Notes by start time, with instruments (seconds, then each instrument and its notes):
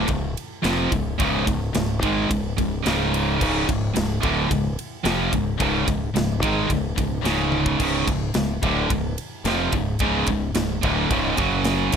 0.08 fingered electric bass C#1, distorted electric guitar C#2 G#2, kick, ride
0.37 ride
0.62 fingered electric bass F1, distorted electric guitar F2 C3 F3, snare, ride
0.91 fingered electric bass C#1, distorted electric guitar C#2 G#2, kick, ride
1.18 fingered electric bass C#1, distorted electric guitar C#2 G#2 C#3, kick, ride
1.45 fingered electric bass C#1, distorted electric guitar C#2 G#2, kick, ride
1.50 overdriven electric guitar G#2
1.73 fingered electric bass C#1, distorted electric guitar C#2 G#2, snare, ride
2.00 fingered electric bass G#1, distorted electric guitar G#2 D#3 G#3, kick, ride
2.05 overdriven electric guitar G#2 G#3
2.30 fingered electric bass C#1, distorted electric guitar C#2 G#2, kick, ride
2.58 fingered electric bass C#1, distorted electric guitar C#2 G#2, kick, ride
2.86 fingered electric bass C#1, distorted electric guitar C#2 G#2 C#3, snare, ride
3.14 ride
3.41 fingered electric bass C#1, distorted electric guitar C#2 G#2 C#3, kick, crash
3.69 fingered electric bass C#1, distorted electric guitar C#2 G#2, kick, ride
3.94 fingered electric bass C#1, distorted electric guitar C#2 G#2, snare, ride
4.22 fingered electric bass D1, distorted electric guitar D2 A2 D3, kick, ride
4.49 fingered electric bass C#1, distorted electric guitar C#2 G#2, kick, ride
4.79 ride
5.04 fingered electric bass F1, distorted electric guitar F2 C3 F3, snare, ride
5.31 fingered electric bass C#1, distorted electric guitar C#2 G#2, kick, ride
5.58 fingered electric bass C#1, distorted electric guitar C#2 G#2 C#3, kick, ride
5.86 fingered electric bass C#1, distorted electric guitar C#2 G#2, kick, ride
6.13 fingered electric bass C#1, distorted electric guitar C#2 G#2, snare, ride
6.41 fingered electric bass G#1, distorted electric guitar G#2 D#3 G#3, kick, ride
6.68 fingered electric bass C#1, distorted electric guitar C#2 G#2, kick, ride
6.72 overdriven electric guitar C#2 G#2
6.96 fingered electric bass C#1, distorted electric guitar C#2 G#2, kick, ride
7.21 fingered electric bass C#1, distorted electric guitar C#2 G#2 C#3
7.25 snare, ride
7.52 high tom
7.66 kick
7.77 fingered electric bass C#1, distorted electric guitar C#2 G#2 C#3, kick, crash
8.05 fingered electric bass C#1, distorted electric guitar C#2 G#2, kick, ride
8.09 overdriven electric guitar G#2
8.34 fingered electric bass C#1, distorted electric guitar C#2 G#2, snare, ride
8.62 fingered electric bass D1, distorted electric guitar D2 A2 D3, kick, ride
8.89 fingered electric bass C#1, distorted electric guitar C#2 G#2, kick, ride
9.18 ride
9.45 fingered electric bass F1, distorted electric guitar F2 C3 F3, snare, ride
9.72 fingered electric bass C#1, distorted electric guitar C#2 G#2, kick, ride
9.99 fingered electric bass C#1, distorted electric guitar C#2 G#2 C#3, kick, ride
10.27 fingered electric bass C#1, distorted electric guitar C#2 G#2, kick, ride
10.54 fingered electric bass C#1, distorted electric guitar C#2 G#2, snare, ride
10.83 fingered electric bass D1, distorted electric guitar D2 A2 D3, kick, ride
11.10 fingered electric bass C#1, distorted electric guitar C#2 G#2 C#3, kick, ride
11.37 fingered electric bass F#1, distorted electric guitar F#2 C#3 F#3, kick, ride
11.64 snare, ride
11.92 fingered electric bass D1, distorted electric guitar D2 D3, overdriven electric guitar A2, crash